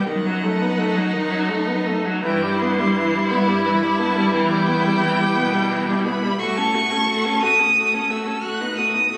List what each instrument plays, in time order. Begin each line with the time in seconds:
0.06 cello F#2, viola D#3, violin D#4 F#5
0.26 viola F#3
0.43 viola A3
0.61 viola B3
0.78 viola A3
0.96 viola F#3
1.13 cello F#2, viola D#3
1.30 viola F#3
1.49 viola A3
1.67 viola B3
1.86 viola A3
2.05 viola F#3
2.23 cello G2, viola E3, violin E4 G5
2.42 viola G3
2.59 viola B3, violin C6
2.79 viola G3
2.97 viola E3
3.14 viola G3
3.29 cello G2, viola B3, violin B5
3.47 viola G3
3.65 viola E3
3.82 viola G3
3.97 viola B3, violin A5
4.16 viola G3
4.33 cello E2, viola E3, violin G5
4.50 viola G3
4.67 viola B3
4.84 viola G3
5.02 viola E3
5.19 viola G3
5.36 cello B2, viola B3
5.53 viola G3
5.70 viola E3
5.87 viola G3
6.04 viola B3, violin B5
6.22 viola G3
6.39 cello A2, viola A3, violin F#4 C#6
6.57 viola C#4, violin A4
6.74 viola A3, violin F#4
6.91 viola C#4, violin A4
7.08 viola A3, violin F#4
7.24 viola C#4, violin A4
7.42 cello A2, viola A3, violin F#4 D#6
7.59 viola C#4, violin A4
7.77 viola A3, violin F#4
7.93 viola C#4, violin A4
8.10 viola A3, violin F#4 E6
8.27 viola C#4, violin A4
8.43 cello A2, viola A3, violin F#4 F#6
8.60 viola B3, violin D#4
8.77 viola A3, violin F#4 D#6
8.94 viola B3, violin D#4
9.11 viola A3, violin F#4